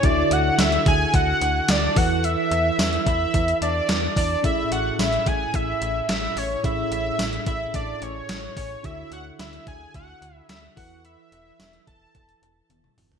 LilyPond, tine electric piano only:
<<
  \new Staff \with { instrumentName = "Tine electric piano" } { \time 4/4 \key a \major \tempo 4 = 109 <d' e' fis' a' e''>2.~ <d' e' fis' a' e''>8 <e' a' b'>8~ | <e' a' b'>2.~ <e' a' b'>8 r8 | <cis' e' gis' a' e''>1 | <cis' e' gis' a' e''>1 |
<d' e' fis' a' e''>2.~ <d' e' fis' a' e''>8 <e' a' b'>8~ | <e' a' b'>2.~ <e' a' b'>8 r8 | }
  \new Staff \with { instrumentName = "Tine electric piano" } { \clef bass \time 4/4 \key a \major d4. r2 e8~ | e4 r2. | a,4. r2 r8 | a,4. r2 r8 |
d4. r2 e8~ | e4 r2. | }
>>